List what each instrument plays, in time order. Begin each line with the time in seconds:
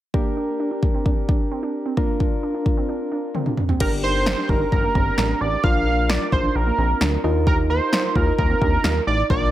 0.14 synth pluck A#3, synth keys D4 G4 A#4, kick
0.37 synth pluck D4
0.60 synth pluck D4
0.71 synth pluck D4
0.83 kick
0.94 synth pluck C4
1.06 synth pluck D4, kick
1.28 synth pluck D4, kick
1.51 synth pluck C4
1.63 synth pluck D4
1.86 synth pluck C4
1.97 synth pluck A#3, synth keys D4 F4 A#4, kick
2.20 synth pluck D4, kick
2.43 synth pluck D4
2.54 synth pluck D4
2.66 kick
2.77 synth pluck C4
2.89 synth pluck D4
3.12 synth pluck D4
3.35 synth pluck C4, high tom
3.46 synth pluck D4, mid tom
3.57 mid tom
3.69 synth pluck C4, floor tom
3.80 analog synth bass G1, synth keys D4 G4 A#4, synth pluck G4, analog synth lead A#4, kick, crash
4.03 synth pluck D#4, analog synth lead C5
4.26 synth pluck D4, snare
4.38 synth pluck D4
4.49 analog synth bass G1, synth pluck D#4, analog synth lead A#4, kick
4.61 synth pluck D4
4.72 analog synth bass G1, analog synth lead A#4, kick
4.83 synth pluck A#3
4.95 analog synth bass G1, synth pluck C4, kick
5.18 analog synth bass A1, synth pluck D4, snare
5.41 analog synth bass A1, synth pluck D4, analog synth lead D5
5.64 analog synth bass A#1, synth keys D4 F4 A#4, synth pluck F4, analog synth lead F5, kick
5.87 synth pluck D4
6.09 synth pluck D4, analog synth lead D5, snare
6.21 synth pluck D4
6.32 analog synth bass A#1, synth pluck D#4, analog synth lead C5, kick
6.44 synth pluck D4
6.55 analog synth bass A#1, analog synth lead A#4
6.67 synth pluck A#3
6.78 analog synth bass A#1, synth pluck C4
7.01 analog synth bass D2, synth pluck D4, snare
7.24 analog synth bass D#2, synth pluck D4, synth keys D#4 F4 A#4
7.47 synth pluck G4, analog synth lead A#4, kick
7.70 synth pluck F4, analog synth lead C5
7.93 synth pluck D#4, snare
8.04 synth pluck D#4
8.15 analog synth bass D#2, synth pluck F4, analog synth lead A#4, kick
8.27 synth pluck D#4
8.38 analog synth bass D#2, analog synth lead A#4, kick
8.50 synth pluck C4
8.61 analog synth bass D#2, synth pluck D4, kick
8.84 analog synth bass D#2, synth pluck D#4, snare
9.07 analog synth bass A1, synth pluck D#4, analog synth lead D5
9.30 analog synth bass A#1, synth keys D4 F4 A#4, synth pluck F4, analog synth lead D5, kick